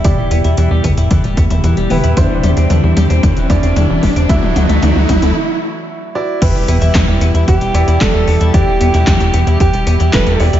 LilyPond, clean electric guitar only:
\new Staff \with { instrumentName = "Clean electric guitar" } { \clef bass \time 4/4 \key e \minor \tempo 4 = 113 e16 g16 b16 e'16 e16 g16 b16 e'16 e16 g16 b16 e'16 e16 g16 b16 e'16 | d16 e16 g16 c'16 d16 e16 g16 c'16 d16 e16 g16 c'16 d16 e16 g16 c'16 | d16 e16 fis16 a16 d16 e16 fis16 a16 r2 | e16 g16 b16 e'16 e16 g16 b16 e'16 e16 g16 b16 e'16 e16 g16 b16 e'16 |
e16 g16 b16 e'16 e16 g16 b16 e'16 e16 g16 b16 e'16 e16 g16 b16 e'16 | }